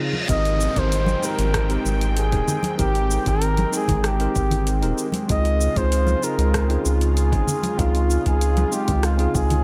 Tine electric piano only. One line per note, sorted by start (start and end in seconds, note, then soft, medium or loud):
0.00 0.13 C#3 medium
0.00 0.13 C4 medium
0.00 0.13 D#4 medium
0.00 0.14 F4 medium
0.00 0.14 G#4 medium
0.28 0.72 C4 loud
0.28 0.72 D#4 medium
0.28 0.72 G4 medium
0.28 0.73 A#4 loud
0.75 1.19 C4 medium
0.75 1.19 D#4 medium
0.75 1.19 G4 medium
0.75 1.20 A#4 medium
1.22 1.66 C4 medium
1.22 1.66 D#4 medium
1.22 1.67 G4 medium
1.22 1.67 A#4 medium
1.69 2.28 C4 medium
1.69 2.28 D#4 medium
1.69 2.29 G4 medium
1.69 2.29 A#4 loud
2.32 2.56 C4 medium
2.32 2.57 D#4 medium
2.32 2.57 G4 medium
2.32 2.57 A#4 medium
2.78 3.22 C4 medium
2.78 3.22 D#4 medium
2.78 3.22 G4 medium
2.78 3.23 A#4 loud
3.25 3.69 C4 medium
3.25 3.69 D#4 medium
3.25 3.69 G4 medium
3.25 3.70 A#4 medium
3.72 4.16 C4 medium
3.72 4.16 D#4 medium
3.72 4.17 A#4 medium
3.72 4.16 G5 medium
4.19 4.78 C4 medium
4.19 4.78 D#4 medium
4.19 4.79 G4 medium
4.19 4.79 A#4 loud
4.81 5.06 C4 medium
4.81 5.06 D#4 medium
4.81 5.07 G4 medium
4.81 5.07 A#4 medium
5.28 5.72 C4 loud
5.28 5.72 D#4 medium
5.28 5.73 F4 medium
5.28 5.73 G#4 loud
5.76 6.19 C4 medium
5.76 6.19 D#4 medium
5.76 6.19 F4 medium
5.76 6.20 G#4 medium
6.22 6.66 C4 medium
6.22 6.66 D#4 medium
6.22 6.66 F4 medium
6.22 6.67 G#4 medium
6.68 7.28 C4 medium
6.68 7.28 D#4 medium
6.68 7.29 F4 medium
6.68 7.29 G#4 loud
7.31 7.56 C4 medium
7.31 7.56 D#4 medium
7.31 7.57 F4 medium
7.31 7.57 G#4 medium
7.78 8.22 C4 loud
7.78 8.22 D#4 medium
7.78 8.22 F4 medium
7.78 8.23 G#4 loud
8.25 8.68 C4 medium
8.25 8.69 D#4 medium
8.25 8.69 F4 medium
8.25 8.69 G#4 medium
8.71 9.16 G#3 medium
8.71 9.15 C4 medium
8.71 9.15 D#4 medium
8.71 9.16 F4 medium
9.18 9.62 C4 medium
9.18 9.63 D#4 medium
9.18 9.63 F4 medium
9.18 9.63 G#4 medium